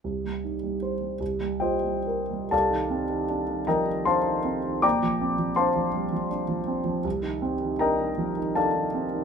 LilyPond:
<<
  \new Staff \with { instrumentName = "Grand piano" } { \time 3/4 \key c \dorian \tempo 4 = 79 r2 <g' c'' ees'' g''>4 | <a' d'' f'' a''>4. <bes' ees'' g'' bes''>8 <c'' f'' a'' c'''>4 | <d'' g'' bes'' d'''>4 <c'' f'' a'' c'''>4 r4 | r4 <bes' ees'' g'' bes''>4 <a' d'' f'' a''>4 | }
  \new Staff \with { instrumentName = "Grand piano" } { \clef bass \time 3/4 \key c \dorian c,16 g16 ees'16 g16 c''8 c,16 g16 f'16 g16 bes'16 g16 | c,16 ees16 c'16 ees16 d'16 ees16 f16 ees16 d'16 ees16 c'16 ees16 | bes,,16 f16 c'16 f16 d'16 f16 g16 f16 d'16 f16 c'16 f16 | c,16 ees16 c'16 ees16 d'16 ees16 f16 ees16 d'16 ees16 c'16 ees16 | }
>>